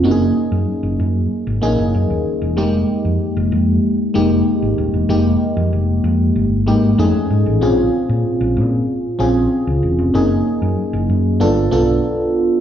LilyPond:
<<
  \new Staff \with { instrumentName = "FM electric piano" } { \time 4/4 \key ges \lydian \tempo 4 = 95 <bes des' ees' ges' aes'>4 r4. <bes des' ees' aes'>4 r8 | <g aes bes ees' g'>4 r4. <aes bes ees' g'>4 r8 | <aes bes ees' g'>4 r4. <aes bes ees' g'>8 <a cis' ees' gis'>4 | <c' des' f' aes'>4 r4. <c' des' f' aes'>4 r8 |
<bes des' ees' aes'>4 r4 <b d' f' a'>8 <b d' f' a'>4 r8 | }
  \new Staff \with { instrumentName = "Fingered electric bass" } { \clef bass \time 4/4 \key ges \lydian ges,,8 r16 ges,16 r16 ges,,16 ges,8 r16 aes,,16 bes,,16 ges,,16 ges,16 ees,16 r16 e,,16 | f,,8 r16 f,16 r16 f,,16 f,8 r8 f,,8 r16 aes,,16 ees,,16 e,,16 | f,,8 r16 f,16 f,,8 f,8 g,,8 aes,,8 f,16 r16 gis,16 a,,16 | bes,,8 r16 bes,16 r16 bes,,16 bes,8 r8 bes,,8 r16 des,16 e,,16 f,,16 |
ges,,8 r16 ges,16 r16 ges,,16 ges,8 g,,8 b,,8 r4 | }
>>